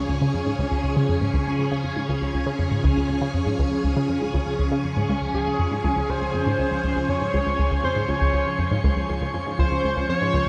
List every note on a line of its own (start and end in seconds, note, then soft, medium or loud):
0.00 10.49 C#3 medium
0.00 10.49 F3 medium
0.00 10.49 C#4 medium
0.00 10.49 G#4 medium
0.09 0.21 C#2 medium
0.22 0.33 C#3 medium
0.34 0.42 F2 medium
0.46 0.54 G#2 medium
0.59 0.64 C#2 loud
0.71 0.79 C#2 medium
0.84 0.96 C#2 medium
0.97 1.08 C#3 loud
1.09 1.17 F2 medium
1.21 1.29 G#2 medium
1.34 1.39 C#2 medium
1.46 1.54 C#2 medium
1.59 1.71 C#2 medium
1.71 1.83 C#3 loud
1.84 1.92 F2 medium
1.96 2.04 G#2 medium
2.09 2.14 C#2 medium
2.21 2.29 C#2 medium
2.34 2.46 C#2 medium
2.46 2.58 C#3 loud
2.59 2.67 F2 medium
2.72 2.79 G#2 medium
2.84 2.89 C#2 loud
2.97 3.04 C#2 medium
3.09 3.21 C#2 medium
3.21 3.33 C#3 loud
3.34 3.42 F2 medium
3.46 3.54 G#2 medium
3.59 3.64 C#2 loud
3.72 3.79 C#2 medium
3.84 3.96 C#2 medium
3.96 4.08 C#3 loud
4.09 4.17 F2 medium
4.22 4.29 G#2 medium
4.34 4.39 C#2 medium
4.47 4.54 C#2 medium
4.59 4.71 C#2 medium
4.72 4.83 C#3 loud
4.84 4.92 F2 medium
4.97 5.04 G#2 medium
5.09 5.14 C#2 medium
5.22 5.29 C#2 medium
5.34 5.45 C#2 medium
5.34 5.81 G#4 medium
5.47 5.54 C#2 medium
5.59 5.67 F2 medium
5.72 5.79 G#2 medium
5.84 5.89 C#2 loud
5.84 6.11 G#4 medium
5.97 6.04 C#2 medium
6.09 6.20 C#2 medium
6.09 7.11 C5 loud
6.22 6.29 C#2 medium
6.34 6.42 F2 medium
6.46 6.54 G#2 medium
6.59 6.64 C#2 loud
6.71 6.79 C#2 medium
6.84 6.95 C#2 medium
6.96 7.04 C#2 medium
7.09 7.17 F2 medium
7.09 7.84 C#5 loud
7.22 7.29 G#2 medium
7.34 7.39 C#2 medium
7.46 7.54 C#2 medium
7.59 7.70 C#2 medium
7.71 7.79 C#2 medium
7.84 7.92 F2 medium
7.84 8.11 C5 medium
7.96 8.04 G#2 medium
8.09 8.14 C#2 medium
8.09 8.84 C#5 loud
8.21 8.29 C#2 medium
8.34 8.45 C#2 medium
8.46 8.54 C#2 medium
8.59 8.67 F2 medium
8.71 8.79 G#2 medium
8.84 8.89 C#2 loud
8.96 9.04 C#2 medium
9.09 9.20 C#2 medium
9.21 9.29 C#2 medium
9.34 9.42 F2 medium
9.47 9.54 G#2 medium
9.59 9.64 C#2 loud
9.59 10.06 C5 loud
9.71 9.79 C#2 medium
9.84 9.95 C#2 medium
9.97 10.04 C#2 medium
10.09 10.17 F2 medium
10.09 10.49 C#5 loud
10.21 10.29 G#2 medium
10.34 10.39 C#2 loud